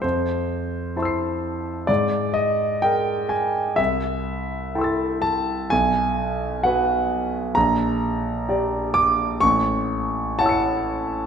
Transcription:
0.02 1.85 F2 soft
0.02 0.96 C5 medium
0.96 1.85 E4 soft
0.96 1.85 C5 soft
0.96 1.85 A5 soft
0.96 1.86 C6 soft
1.03 1.88 E6 soft
1.03 1.89 C7 soft
1.87 3.75 G#2 soft
1.87 2.35 D5 medium
2.34 2.82 D#5 medium
2.82 3.75 G#4 soft
2.82 3.75 A#4 soft
2.82 3.30 G5 medium
3.29 3.78 G#5 medium
3.76 5.66 C2 soft
3.76 5.22 E5 medium
4.75 5.67 E4 soft
4.75 5.67 A4 soft
4.75 5.67 G5 soft
4.75 5.68 C6 soft
4.81 5.70 E6 soft
4.81 5.71 A6 soft
5.22 5.70 A5 medium
5.70 7.52 B1 soft
5.70 6.64 G#5 medium
6.63 7.52 F#4 soft
6.63 7.52 B4 soft
6.63 7.55 F#5 medium
7.55 9.38 A#1 medium
7.55 8.94 A#5 medium
8.49 9.38 G4 soft
8.49 9.39 D5 soft
8.94 9.42 D6 medium
9.40 11.27 A1 medium
9.40 10.38 C#6 medium
10.39 11.27 E4 soft
10.39 11.27 C#5 soft
10.39 11.27 F#5 soft
10.39 11.27 A5 medium
10.46 11.27 E6 soft
10.46 11.27 C#7 soft

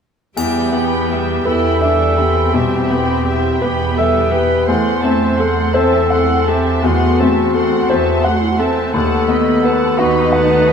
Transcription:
0.37 2.50 E2 soft
0.37 1.34 E2 soft
0.37 0.71 G3 soft
0.37 1.42 B3 soft
0.37 1.47 G4 medium
0.37 0.71 E5 soft
0.37 0.71 G5 soft
0.37 triangle soft
0.72 1.31 B3 soft
0.72 1.10 B3 soft
0.72 1.10 G5 soft
0.72 1.10 B5 soft
1.09 1.46 G3 soft
1.09 1.68 G4 soft
1.09 1.47 E5 soft
1.09 1.46 G5 soft
1.45 2.42 E2 soft
1.45 1.82 B3 soft
1.45 1.82 E4 soft
1.45 2.55 A4 medium
1.45 2.03 B4 soft
1.45 1.83 G5 soft
1.45 1.83 B5 soft
1.81 2.16 G3 soft
1.81 2.18 D4 soft
1.81 2.39 E5 soft
1.81 2.16 E5 soft
1.81 2.15 G5 soft
2.16 2.54 B3 soft
2.16 3.63 C4 soft
2.16 2.75 G4 soft
2.16 2.54 G5 soft
2.16 2.55 B5 soft
2.53 3.50 E2 soft
2.53 3.12 B2 soft
2.53 2.91 G3 soft
2.53 3.61 G4 medium
2.53 2.91 E5 soft
2.53 2.91 G5 soft
2.90 3.48 B3 soft
2.90 3.27 B3 soft
2.90 3.27 G5 soft
2.90 3.27 B5 soft
3.25 3.60 G3 soft
3.25 3.83 G4 soft
3.25 3.60 E5 soft
3.25 3.60 G5 soft
3.61 4.56 E2 soft
3.61 4.68 B3 soft
3.61 3.99 B3 soft
3.61 3.97 G4 medium
3.61 4.19 B4 soft
3.61 3.98 G5 soft
3.61 3.98 B5 soft
3.97 4.34 G3 soft
3.97 4.33 A4 medium
3.97 4.33 E5 soft
3.97 4.54 E5 soft
3.97 4.34 G5 soft
4.32 4.69 B3 soft
4.32 4.68 G4 soft
4.32 4.69 B4 medium
4.32 4.68 G5 soft
4.32 4.68 B5 soft
4.68 5.62 E2 soft
4.68 6.80 E2 soft
4.68 5.75 A3 soft
4.68 5.01 A3 soft
4.68 5.76 C5 medium
4.68 5.01 F#5 soft
4.68 5.01 C6 soft
5.03 5.39 C4 soft
5.03 5.61 C4 soft
5.03 5.39 E5 soft
5.03 5.39 A5 soft
5.38 5.76 A3 soft
5.38 5.97 A4 soft
5.38 5.75 F#5 soft
5.38 5.75 C6 soft
5.74 6.71 E2 soft
5.74 6.82 C4 soft
5.74 6.12 C4 soft
5.74 6.49 A4 medium
5.74 6.33 C5 soft
5.74 6.11 E5 soft
5.74 6.12 A5 soft
6.10 6.46 A3 soft
6.10 6.69 F#5 soft
6.10 6.46 F#5 soft
6.10 6.45 C6 soft
6.47 6.84 C4 soft
6.47 6.86 G4 soft
6.47 7.05 A4 soft
6.47 6.84 E5 soft
6.47 6.84 A5 soft
6.83 8.90 E2 soft
6.83 7.78 E2 soft
6.83 7.20 A3 soft
6.83 7.20 B3 soft
6.83 8.27 F#4 medium
6.83 7.20 F#5 soft
6.83 7.20 C6 soft
7.20 7.55 A3 soft
7.20 7.76 C4 soft
7.20 7.56 C4 soft
7.20 7.55 E5 soft
7.20 7.55 A5 soft
7.54 7.88 A3 soft
7.54 7.90 C4 soft
7.54 8.11 A4 soft
7.54 7.88 F#5 soft
7.54 7.88 C6 soft
7.90 8.83 E2 soft
7.90 8.26 B3 soft
7.90 8.26 C4 soft
7.90 8.46 C5 soft
7.90 8.25 E5 soft
7.90 8.26 A5 soft
8.24 8.60 A3 soft
8.24 8.35 G4 soft
8.24 8.80 F#5 soft
8.24 8.60 F#5 soft
8.24 8.60 C6 soft
8.33 8.43 F#4 soft
8.42 8.53 E4 soft
8.51 8.60 F#4 soft
8.59 8.95 C4 soft
8.59 8.94 A4 soft
8.59 8.94 E5 soft
8.59 8.94 A5 soft
8.94 10.73 D#2 soft
8.94 9.87 D#2 soft
8.94 9.27 A3 soft
8.94 9.30 B3 soft
8.94 9.95 A4 medium
8.94 9.27 F#5 soft
8.94 9.27 A5 soft
9.28 9.64 A3 soft
9.28 9.85 B3 soft
9.28 9.64 B3 soft
9.28 9.64 D#5 soft
9.28 9.65 B5 soft
9.64 9.99 A3 soft
9.64 10.00 B3 soft
9.64 10.20 B4 soft
9.64 9.99 F#5 soft
9.64 9.99 A5 soft
9.98 10.73 D#2 soft
9.98 10.34 B3 soft
9.98 10.73 D#4 medium
9.98 10.55 F#4 soft
9.98 10.73 B4 medium
9.98 10.34 D#5 soft
9.98 10.34 B5 soft
10.32 10.67 A3 soft
10.32 10.73 F#5 soft
10.32 10.67 F#5 soft
10.32 10.67 A5 soft
10.69 10.73 B3 soft
10.69 10.73 B4 soft
10.69 10.73 D#5 soft

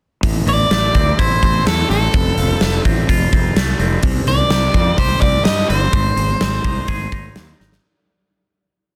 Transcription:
0.23 0.40 A1 medium
0.23 1.43 A2 medium
0.23 kick medium
0.23 open hi-hat medium
0.46 0.64 A1 medium
0.46 1.66 E3 medium
0.46 1.19 D5 medium
0.46 open hi-hat soft
0.71 0.88 A1 medium
0.71 1.65 A3 medium
0.71 snare loud
0.71 open hi-hat medium
0.95 1.12 D2 medium
0.95 1.43 C4 medium
0.95 kick medium
0.95 open hi-hat soft
1.19 1.36 A1 medium
1.19 2.14 E4 medium
1.19 1.63 C5 loud
1.19 kick medium
1.19 open hi-hat medium
1.43 1.60 A1 medium
1.43 1.90 C4 soft
1.43 kick medium
1.43 open hi-hat soft
1.66 1.83 E2 medium
1.66 2.14 A3 medium
1.66 1.89 A4 medium
1.66 snare loud
1.66 open hi-hat medium
1.90 2.07 A1 medium
1.90 2.85 C4 medium
1.90 2.81 A4 medium
1.90 open hi-hat soft
2.14 2.31 F1 medium
2.14 3.33 F2 medium
2.14 kick medium
2.14 open hi-hat medium
2.37 2.54 F1 medium
2.37 3.56 F3 medium
2.37 open hi-hat soft
2.61 2.78 F1 medium
2.61 3.55 A3 medium
2.61 snare loud
2.61 open hi-hat medium
2.85 3.02 A1 medium
2.85 3.32 C4 medium
2.85 kick medium
2.85 open hi-hat soft
3.09 3.26 F1 medium
3.09 4.04 F4 medium
3.09 kick medium
3.09 open hi-hat medium
3.32 3.50 F1 medium
3.32 3.80 C4 medium
3.32 kick medium
3.32 open hi-hat soft
3.56 3.73 C2 medium
3.56 4.04 A3 medium
3.56 snare loud
3.56 open hi-hat medium
3.79 3.96 F1 medium
3.79 4.75 C4 medium
3.79 open hi-hat soft
4.03 4.20 C2 medium
4.03 5.22 C3 medium
4.03 kick loud
4.03 open hi-hat medium
4.26 4.44 C2 medium
4.26 5.46 D#3 medium
4.26 4.98 D5 medium
4.26 open hi-hat soft
4.50 4.67 C2 medium
4.50 5.45 G3 medium
4.50 snare loud
4.50 open hi-hat medium
4.74 4.91 F2 medium
4.74 5.22 C4 medium
4.74 kick medium
4.74 open hi-hat soft
4.98 5.15 C2 medium
4.98 5.93 G4 medium
4.98 5.21 C5 medium
4.98 kick medium
4.98 open hi-hat medium
5.21 5.39 C2 medium
5.21 5.69 C4 medium
5.21 5.44 D5 loud
5.21 kick medium
5.21 open hi-hat soft
5.45 5.63 G2 medium
5.45 5.93 G3 medium
5.45 5.69 D#5 medium
5.45 snare loud
5.45 open hi-hat medium
5.69 5.86 G1 medium
5.69 6.41 C4 medium
5.69 7.56 C5 medium
5.69 open hi-hat soft
5.93 6.10 G#1 medium
5.93 7.12 G#2 medium
5.93 kick loud
5.93 open hi-hat medium
6.17 6.34 G#1 medium
6.17 7.36 G#3 medium
6.17 open hi-hat medium
6.41 6.58 G#1 medium
6.41 7.35 C4 medium
6.41 snare loud
6.41 open hi-hat medium
6.64 6.82 C2 medium
6.64 7.11 D#4 medium
6.64 kick medium
6.64 open hi-hat soft
6.88 7.05 G#1 medium
6.88 7.84 G#4 medium
6.88 kick medium
6.88 open hi-hat medium
7.12 7.29 G#1 medium
7.12 7.58 D#4 medium
7.12 kick medium
7.12 open hi-hat soft
7.36 7.53 D#2 medium
7.36 7.84 C4 medium
7.36 snare loud
7.36 open hi-hat medium
7.60 7.77 G#1 medium
7.60 7.84 D#4 medium
7.60 snare medium
7.72 snare medium

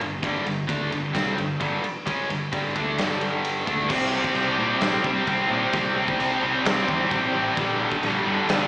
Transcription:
0.00 0.21 G1 medium
0.00 0.18 G2 medium
0.00 0.19 D3 medium
0.00 ride medium
0.23 0.44 G1 loud
0.23 0.44 G2 medium
0.23 0.44 D3 medium
0.23 0.45 G3 medium
0.23 kick loud
0.23 ride medium
0.45 0.67 G1 medium
0.45 0.64 G2 medium
0.45 0.64 D3 medium
0.45 ride medium
0.68 0.90 D2 medium
0.68 0.90 D3 medium
0.68 0.90 A3 medium
0.68 0.91 D4 loud
0.68 kick loud
0.68 ride medium
0.90 1.12 G1 medium
0.90 1.09 G2 medium
0.90 1.10 D3 medium
0.90 ride medium
1.13 1.36 C2 medium
1.13 1.36 C3 medium
1.13 1.36 G3 medium
1.13 1.37 C4 loud
1.13 kick loud
1.13 snare loud
1.13 ride medium
1.37 1.59 G1 medium
1.37 1.55 G2 medium
1.37 1.55 D3 medium
1.37 ride medium
1.60 1.82 G1 medium
1.60 1.82 G2 medium
1.60 1.82 D3 medium
1.60 1.83 G3 medium
1.60 kick medium
1.60 ride medium
1.83 muted distorted electric guitar stroke medium
1.83 muted fingered electric bass stroke soft
1.83 ride medium
2.06 2.28 C#2 medium
2.06 2.28 C#3 medium
2.06 2.29 G#3 medium
2.06 2.29 C#4 medium
2.06 kick loud
2.06 ride loud
2.29 2.50 G1 medium
2.29 2.48 G2 medium
2.29 2.48 D3 medium
2.29 ride medium
2.52 2.74 G1 medium
2.52 2.74 G2 medium
2.52 2.74 D3 medium
2.52 2.75 G3 medium
2.52 kick loud
2.52 ride loud
2.75 2.97 D2 medium
2.75 2.97 D3 medium
2.75 2.98 A3 medium
2.75 2.98 D4 medium
2.75 kick loud
2.75 ride medium
2.97 3.63 G1 medium
2.97 3.66 G2 medium
2.97 3.65 D3 medium
2.97 3.67 G3 medium
2.97 snare loud
2.97 ride medium
3.11 snare soft
3.21 ride medium
3.45 ride medium
3.66 3.88 D2 medium
3.66 3.89 D3 medium
3.66 3.89 A3 medium
3.66 3.90 D4 medium
3.66 kick medium
3.66 ride medium
3.89 4.12 C3 medium
3.89 4.13 G3 loud
3.89 7.54 C4 medium
3.89 4.13 C4 loud
3.89 7.54 G4 medium
3.89 7.54 D5 medium
3.89 kick loud
3.89 crash loud
3.89 crash medium
4.12 4.35 C3 medium
4.12 4.35 G3 medium
4.12 4.36 C4 loud
4.24 kick medium
4.24 snare soft
4.35 4.49 C2 medium
4.35 4.58 C3 medium
4.35 4.58 G3 medium
4.35 4.59 C4 loud
4.35 crash medium
4.58 4.72 A#2 medium
4.58 4.81 C3 medium
4.58 4.82 G3 medium
4.58 4.82 C4 medium
4.81 4.95 A#1 medium
4.81 5.03 C3 loud
4.81 5.04 G3 loud
4.81 5.04 C4 loud
4.81 snare loud
4.81 crash medium
5.04 5.19 C2 medium
5.04 5.25 C3 medium
5.04 5.27 G3 medium
5.04 5.27 C4 loud
5.04 kick medium
5.27 5.42 C2 medium
5.27 5.49 C3 medium
5.27 5.50 G3 loud
5.27 5.50 C4 loud
5.27 kick medium
5.27 crash medium
5.50 5.64 A#2 medium
5.50 5.71 C3 medium
5.50 5.73 G3 medium
5.50 5.73 C4 medium
5.73 5.88 C2 loud
5.73 5.94 C3 medium
5.73 5.96 G3 loud
5.73 5.95 C4 loud
5.73 kick loud
5.73 crash medium
5.96 6.11 C2 medium
5.96 6.18 C3 medium
5.96 6.19 G3 medium
5.96 6.19 C4 medium
6.08 kick medium
6.19 6.34 C2 medium
6.19 6.40 C3 medium
6.19 6.42 G3 medium
6.19 6.41 C4 medium
6.19 crash medium
6.41 6.57 C2 medium
6.41 6.64 C3 medium
6.41 6.65 G3 loud
6.41 6.65 C4 loud
6.65 6.79 C2 loud
6.65 6.87 C3 medium
6.65 6.89 G3 loud
6.65 6.88 C4 loud
6.65 snare loud
6.65 crash medium
6.88 7.03 E2 medium
6.88 7.10 C3 medium
6.88 7.12 G3 loud
6.88 7.12 C4 loud
6.88 kick medium
7.11 7.25 A#1 medium
7.11 7.32 C3 medium
7.11 7.34 G3 medium
7.11 7.34 C4 medium
7.11 kick medium
7.11 crash medium
7.33 7.48 A1 medium
7.33 7.56 C3 medium
7.33 7.57 G3 medium
7.33 7.56 C4 loud
7.56 7.85 A#1 loud
7.56 7.78 G2 medium
7.56 7.79 D3 loud
7.56 8.68 G3 medium
7.56 7.80 G3 loud
7.56 8.68 D4 medium
7.56 8.68 A4 medium
7.56 kick loud
7.56 crash medium
7.80 8.01 G2 medium
7.80 8.01 D3 medium
7.80 8.03 G3 loud
7.92 kick medium
8.02 8.17 A#1 loud
8.02 8.24 G2 medium
8.02 8.24 D3 medium
8.02 8.26 G3 medium
8.02 crash medium
8.25 8.47 G2 medium
8.25 8.40 G2 medium
8.25 8.48 D3 medium
8.25 8.49 G3 medium
8.48 8.63 G1 loud
8.48 8.68 G2 loud
8.48 8.68 D3 loud
8.48 8.68 G3 loud
8.48 snare loud
8.48 crash medium

